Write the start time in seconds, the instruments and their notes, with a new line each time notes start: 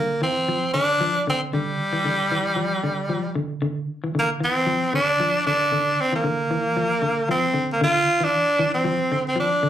Already playing: clean electric guitar D3, tenor saxophone A#3
0.22 clean electric guitar E3, tenor saxophone C4
0.48 clean electric guitar F3
0.74 clean electric guitar D3, tenor saxophone D4
1.01 clean electric guitar F3
1.27 clean electric guitar D3, tenor saxophone C4
1.53 clean electric guitar D3, tenor saxophone G3
1.93 clean electric guitar E3
2.05 clean electric guitar D3
2.32 clean electric guitar E3
2.56 clean electric guitar F3
2.84 clean electric guitar D3
3.09 clean electric guitar F3
3.35 clean electric guitar D3
3.62 clean electric guitar D3
4.04 clean electric guitar E3
4.15 clean electric guitar D3
4.19 tenor saxophone A#3
4.40 clean electric guitar E3, tenor saxophone C4
4.67 clean electric guitar F3
4.93 clean electric guitar D3, tenor saxophone D4
5.20 clean electric guitar F3
5.47 clean electric guitar D3, tenor saxophone D4
5.72 clean electric guitar D3
6.00 tenor saxophone C4
6.13 clean electric guitar E3, tenor saxophone A#3
6.24 clean electric guitar D3
6.51 clean electric guitar E3
6.77 clean electric guitar F3
7.02 clean electric guitar D3
7.29 clean electric guitar F3, tenor saxophone C4
7.54 clean electric guitar D3
7.72 tenor saxophone A#3
7.81 clean electric guitar D3, tenor saxophone F4
8.21 clean electric guitar E3, tenor saxophone D4
8.59 clean electric guitar E3
8.74 tenor saxophone C4
8.85 clean electric guitar F3
9.12 clean electric guitar D3
9.28 tenor saxophone C4
9.36 clean electric guitar F3
9.40 tenor saxophone D4
9.63 clean electric guitar D3